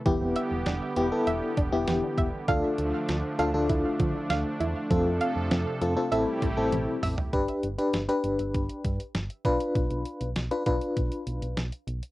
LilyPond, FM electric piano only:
\new Staff \with { instrumentName = "FM electric piano" } { \time 4/4 \key g \mixolydian \tempo 4 = 99 <b e' g'>4~ <b e' g'>16 r16 <b e' g'>16 <b e' a'>8. r16 <b e' g'>4 r16 | <d' f' a'>4~ <d' f' a'>16 r16 <d' f' a'>16 <d' f' a'>4. r8. | <c' f' a'>4~ <c' f' a'>16 r16 <c' f' a'>16 <c' f' a'>16 <c' e' a'>8 r16 <c' e' a'>4 r16 | <d' g' b'>8 r16 <d' g' b'>8 <d' g' b'>4. r8. <d' f' b'>8~ |
<d' f' b'>4 r16 <d' f' b'>16 <d' f' b'>4. r4 | }